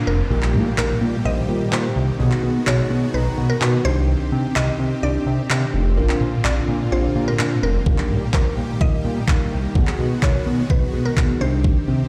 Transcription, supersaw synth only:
Already playing: D3 A#3 C4 F4
0.31 D#3 G3 G4
2.20 G#3 B3 F#4
3.85 C4 G4
5.97 D3 A#3 F4
7.86 D#3 G3 G4
9.75 G#3 B3 F#4
11.41 C4 G4

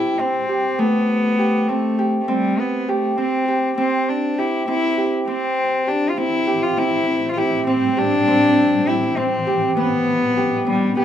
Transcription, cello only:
Already playing: E4
0.20 C4
0.80 B3
1.69 A3
2.21 A3
2.29 G3
2.59 B3
2.89 A3
3.19 C4
3.78 C4
4.09 D4
4.39 E4
4.68 E4
5.28 C4
5.88 D4
6.09 F4
6.18 E4
6.62 F4
6.78 E4
7.31 F4
7.38 E4
7.67 C4
7.98 D4
8.88 E4
9.18 C4
9.77 B3
10.69 G3
10.98 B3

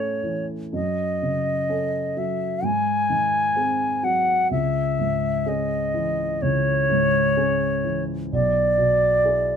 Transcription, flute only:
Already playing: C#5
0.74 D#5
2.18 E5
2.65 G#5
4.04 F#5
4.51 E5
5.49 D#5
6.42 C#5
8.33 D5

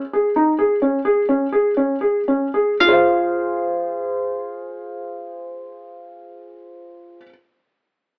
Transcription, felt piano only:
0.13 G#4
0.36 D#4
0.59 G#4
0.82 C#4
1.05 G#4
1.29 C#4
1.52 G#4
1.77 C#4
2.01 G#4
2.28 C#4
2.54 G#4
2.80 F4
2.85 G#4 C5
2.93 F5

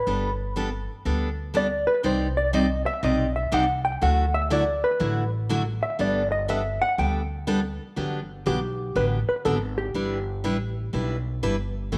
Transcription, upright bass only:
0.07 G1
1.05 D2
2.04 C2
3.03 B1
3.52 C2
4.02 D2
5.01 A1
5.99 G1
6.98 D2
7.97 G1
8.46 B1
8.96 A1
9.28 muted upright bass stroke
9.45 G#1
9.94 G1
10.44 A1
10.93 B1
11.43 G1
11.92 A1

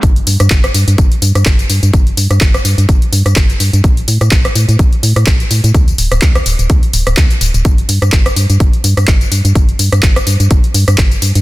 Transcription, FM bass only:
0.03 G1
0.27 G2
0.40 G2
0.51 G1
0.74 G2
0.88 G2
0.98 G1
1.22 G2
1.35 G2
1.46 G1
1.70 G2
1.83 G2
1.93 G1
2.17 G2
2.30 G2
2.41 G1
2.65 G2
2.78 G2
2.89 G1
3.12 G2
3.26 G2
3.36 G1
3.60 G2
3.73 G2
3.84 A1
4.08 A2
4.21 A2
4.32 A1
4.55 A2
4.68 A2
4.79 A1
5.03 A2
5.16 A2
5.27 A1
5.51 A2
5.64 A2
5.74 D2
5.98 D1
6.12 D1
6.22 D2
6.46 D1
6.59 D1
6.70 D2
6.93 D1
7.07 D1
7.17 D2
7.41 D1
7.54 D1
7.65 G1
7.89 G2
8.02 G2
8.13 G1
8.36 G2
8.50 G2
8.60 G1
8.84 G2
8.97 G2
9.08 G1
9.32 G2
9.45 G2
9.55 G1
9.79 G2
9.92 G2
10.03 G1
10.27 G2
10.40 G2
10.51 G1
10.74 G2
10.88 G2
10.98 G1
11.22 G2
11.35 G2

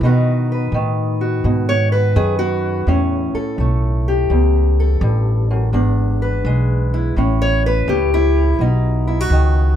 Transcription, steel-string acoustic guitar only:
0.03 B2 D#3 D#4 F#4 B4
0.52 B4
0.74 D#3
1.21 F#4
1.45 B2
1.69 C#5
1.92 F#4 B4
2.16 D#3 G#4
2.39 F#4
2.88 A2 C#4
3.35 A4
3.60 A3
4.08 G4
4.31 E2
4.80 A4
5.03 G2
5.51 F#2
5.73 E2 D4
6.22 B4
6.46 G#3
6.94 E4
7.17 A2 C#4
7.42 C#5
7.66 B4
7.88 A3 G4
8.14 E4
8.60 B2 D#4
9.07 E4
9.21 F#4
9.32 D#3

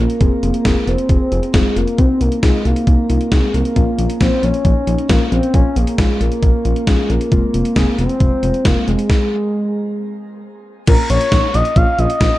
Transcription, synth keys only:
0.00 C#4 F4 A#4
0.21 C4 F4 G#4
0.43 C4 F4 G#4
0.65 C4 F4 G#4
0.87 C4 F4 A#4
1.09 C4 F4 G#4
1.31 C4 F4 G#4
1.54 C4 F4 G#4
1.76 C4 F4 G#4
1.98 C4 D#4 F#4
2.21 C4 D#4 F#4
2.43 C4 D#4 F4
2.65 C4 D#4 F#4
2.87 C4 D#4 F#4
3.10 C4 D#4 F4
3.32 C4 D#4 F#4
3.54 C4 D#4 F#4
3.76 A#3 C#4 F4
3.98 A#3 C#4 F4
4.21 A#3 C#4 F4
4.43 A#3 C#4 F4
4.65 A#3 C#4 D#4
4.87 A#3 C#4 D#4
5.09 A#3 C#4 F4
5.32 A#3 C#4 F4
5.54 A#3 C#4 F4
5.76 A#3 C#4 G#4
5.98 A#3 C#4 F4
6.20 A#3 C#4 F4
6.43 A#3 C#4 F4
6.65 A#3 C#4 F4
6.87 A#3 C#4 F4
7.09 A#3 C#4 F4
7.32 G#3 C4 F4
7.54 G#3 C4 F4
7.76 G#3 C4 G#4
7.98 G#3 C4 F4
8.21 G#3 C4 F4
8.43 G#3 C4 F4
8.65 G#3 C4 F4
8.87 G#3 C4 G#4
10.87 A#3 C#4 F4
11.10 A#3 C#4 F4
11.32 A#3 C#4 D#4
11.54 A#3 C#4 F4
11.76 A#3 C#4 F4
11.98 A#3 C#4 F4
12.21 A#3 C#4 F4

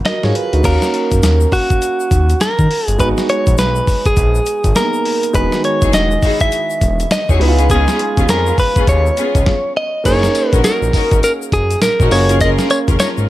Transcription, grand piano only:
Already playing: A#3 B3 D#4 F#4
0.06 F#4 A#4
0.23 F4 G#4
0.53 D#4 F#4
0.63 A#3 C#4 F#4 F5
2.98 G#3 B3 D#4 F#4
4.75 A#3 B3 D#4 G#4
5.33 D#3 G#3 B3 F#4
7.39 G#3 B3 D#4 E4
7.48 F4
10.04 A#3 C#4 D#4 G#4
12.10 A#3 C#4 F4 G#4

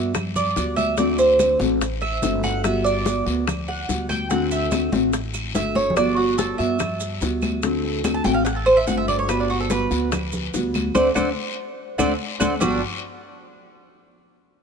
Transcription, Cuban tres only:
Already playing: E5
0.36 D5
0.76 E5
0.98 D5
1.19 C5
2.01 E5
2.44 F#5
2.64 E5
2.84 D5
3.68 F#5
4.09 G5
4.30 F#5
4.51 E5
5.55 E5
5.76 C#5
5.97 D5
6.17 F#4
6.38 A4
6.58 E5
8.14 A5
8.24 G5
8.34 F5
8.45 F#5
8.56 A4
8.66 C5
8.77 E5
8.87 F#5
8.97 E5
9.08 D5
9.19 C#5
9.29 B4
9.40 D4
9.50 F#4
9.60 A4
9.71 B4
10.95 C5 D5 F#5
11.15 C5 D5 F#5
11.98 C5 D5 F#5
12.40 C5 D5 F#5
12.60 G3 D4 F#4

